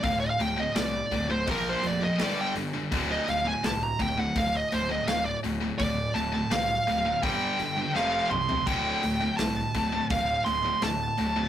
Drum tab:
CC |----------------|----------------|----------------|x---------------|
HH |o-o-o-o-o-o-o-o-|o-o-o-o-o-o-o-o-|o-o-o-o-o-o-----|--o-o-o-o-o-o-o-|
SD |----o-------o---|----o-------o---|----o-------o---|----o-------o---|
T2 |----------------|----------------|--------------o-|----------------|
FT |----------------|----------------|---------------o|----------------|
BD |o-----o-o-------|o-----o-o-------|o-------o-------|o-----o-o-------|